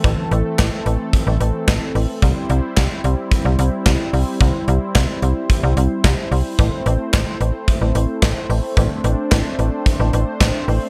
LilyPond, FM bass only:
\new Staff \with { instrumentName = "FM bass" } { \clef bass \time 4/4 \key a \minor \tempo 4 = 110 a,,16 r16 a,,16 r16 a,,16 r16 a,,16 r8 a,,16 a,,16 r16 a,,16 r16 a,,16 r16 | c,16 r16 c,16 r16 c,16 r16 c,16 r8 c,16 c,16 r16 c,16 r16 c,16 r16 | c,16 r16 c,16 r16 c,16 r16 c,16 r8 c,16 c,16 r16 c,16 r16 c,16 r16 | a,,16 r16 a,,16 r16 a,,16 r16 a,,16 r8 a,,16 a,,16 r16 a,,16 r16 a,,16 r16 |
a,,16 r16 a,,16 r16 a,,16 r16 a,,16 r8 a,,16 a,,16 r16 a,,16 r16 a,,16 r16 | }